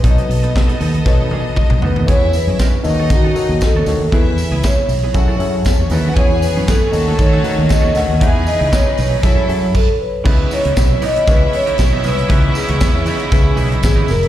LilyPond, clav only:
\new Staff \with { instrumentName = "Clav" } { \time 4/4 \key b \mixolydian \tempo 4 = 117 << { r2. dis''8 fis''8 | \key cis \minor r1 | r1 | r1 |
r1 | r1 | r1 | } \\ { <b, b d' dis' a' cis''>4. r8 <b, b dis' a' cis''>4. r8 | <e b fis' gis' cis''>4. <dis dis' eis' fis' a' cis''>4 <dis dis' fis' a' cis''>8. r16 <dis dis' fis' a' cis''>8 | <e cis' e' gis' b'>4. r8 <fis cis' e' gis' a'>8 <fis cis' e' gis' a'>8. r16 <fis cis' e' gis' b'>8 | <e e' fis' gis' cis''>4. <dis dis' fis' a' cis''>4 <dis dis' fis' a' b' cis''>8. r16 <dis dis' fis' a' cis''>8 |
<e cis' dis' gis' b'>4. r8 <fis cis' e' gis' a'>8 <fis cis' e' gis' a'>8 r4 | <cis b cis' e' b'>4. r8 <cis b cis' e' b'>4. r8 | <cis b cis' e' b'>4. r8 <cis b cis' e' gis'>4. r8 | } >> }